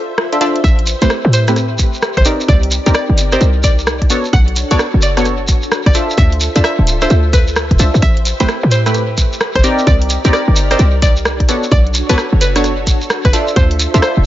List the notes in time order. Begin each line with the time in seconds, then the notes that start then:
Already playing: F4 A4 C5 E5
0.18 cross-stick
0.32 D4 F4 A4 C5 E5, closed hi-hat
0.41 D4 F4 A4 C5 E5, cross-stick, open hi-hat
0.56 closed hi-hat
0.64 A1 G4 B4 E5, kick, closed hi-hat, shekere
0.79 closed hi-hat
0.86 open hi-hat, shekere
1.02 A1 A3 C4 E4 G4 B4 C5, closed hi-hat, shekere
1.10 cross-stick, shekere
1.25 A2
1.33 C5, open hi-hat, shekere
1.48 A3 C4 E4 G4 B4, cross-stick, closed hi-hat, shekere
1.56 cross-stick, closed hi-hat, shekere
1.78 kick, open hi-hat, shekere
1.94 shekere
2.02 cross-stick, shekere
2.17 E1 C5, kick, cross-stick, closed hi-hat
2.25 C4 D#4 G4 A#4 D5, open hi-hat, shekere
2.41 shekere
2.48 C2 D#4 A#4 D5, kick, closed hi-hat, shekere
2.63 open hi-hat
2.71 open hi-hat, shekere
2.86 C2 C4 D#4 G4 A#4 D5, closed hi-hat, shekere
2.94 D5, cross-stick, shekere
3.09 G1
3.18 open hi-hat, shekere
3.32 C4 D#4 G4 A#4 C5 D5, cross-stick, closed hi-hat, shekere
3.41 C2, closed hi-hat, shekere
3.63 D5, kick, open hi-hat, shekere
3.79 shekere
3.86 cross-stick, shekere
4.02 kick, closed hi-hat
4.10 B3 D4 F#4 A4 C#5, open hi-hat, shekere
4.24 shekere
4.33 B1 F#5, kick, closed hi-hat, shekere
4.48 closed hi-hat
4.56 open hi-hat, shekere
4.71 B1 B3 D4 F#4 A4 C#5 D5, closed hi-hat, shekere
4.79 cross-stick, shekere
4.94 F#1
5.02 D5, open hi-hat, shekere
5.17 B3 D4 F#4 A4 C#5, cross-stick, closed hi-hat, shekere
5.25 cross-stick, closed hi-hat, shekere
5.48 kick, open hi-hat, shekere
5.62 shekere
5.72 cross-stick, shekere
5.86 F#1 D5, kick, cross-stick, closed hi-hat
5.94 D4 F4 A4 C5 E5, open hi-hat, shekere
6.10 shekere
6.18 D2 E5, kick, closed hi-hat, shekere
6.32 open hi-hat
6.40 open hi-hat, shekere
6.56 D2 D4 F4 A4 C5 E5, closed hi-hat, shekere
6.64 E5, cross-stick, shekere
6.79 D1
6.87 open hi-hat, shekere
7.01 D4 F4 A4 C5 E5, cross-stick, closed hi-hat, shekere
7.10 D2, closed hi-hat, shekere
7.33 B4, kick, open hi-hat, shekere
7.47 shekere
7.56 cross-stick, shekere
7.71 D1, kick, closed hi-hat
7.79 C2 D4 F4 A4 C5 E5, open hi-hat, shekere
7.94 F2, shekere
8.02 A1 G4 B4 E5, kick, closed hi-hat, shekere
8.17 closed hi-hat
8.25 open hi-hat, shekere
8.40 A1 A3 C4 E4 G4 B4 C5, closed hi-hat, shekere
8.48 cross-stick, shekere
8.63 A2
8.71 C5, open hi-hat, shekere
8.86 A3 C4 E4 G4 B4, cross-stick, closed hi-hat, shekere
8.94 cross-stick, closed hi-hat, shekere
9.18 kick, open hi-hat, shekere
9.33 shekere
9.40 cross-stick, shekere
9.55 E1 C5, kick, cross-stick, closed hi-hat
9.64 C4 D#4 G4 A#4 D5, open hi-hat, shekere
9.79 shekere
9.87 C2 D#4 G4 A#4 D5, kick, closed hi-hat, shekere
10.02 open hi-hat
10.10 open hi-hat, shekere
10.25 C2 C4 D#4 G4 A#4 D5, closed hi-hat, shekere
10.33 D5, cross-stick, shekere
10.48 G1
10.56 open hi-hat, shekere
10.71 C4 D#4 G4 A#4 C5 D5, cross-stick, closed hi-hat, shekere
10.79 C2, closed hi-hat, shekere
11.02 D5, kick, open hi-hat, shekere
11.17 shekere
11.25 cross-stick, shekere
11.40 kick, closed hi-hat
11.48 B3 D4 F#4 A4 C#5, open hi-hat, shekere
11.63 shekere
11.71 B1 D5, kick, closed hi-hat, shekere
11.87 closed hi-hat
11.94 open hi-hat, shekere
12.09 B1 B3 D4 F#4 A4 B4 C#5, closed hi-hat, shekere
12.18 cross-stick, shekere
12.33 F#1
12.41 B4, open hi-hat, shekere
12.56 B3 D4 F#4 A4 C#5, cross-stick, closed hi-hat, shekere
12.64 cross-stick, closed hi-hat, shekere
12.87 kick, open hi-hat, shekere
13.01 shekere
13.10 cross-stick, shekere
13.25 F#1 B4, kick, cross-stick, closed hi-hat
13.33 D4 F4 A4 C5 E5, open hi-hat, shekere
13.47 shekere
13.56 D2 C5, kick, closed hi-hat, shekere
13.71 open hi-hat
13.79 open hi-hat, shekere
13.94 D2 D4 F4 A4 C5 E5, closed hi-hat, shekere
14.02 C5, cross-stick, shekere
14.17 D1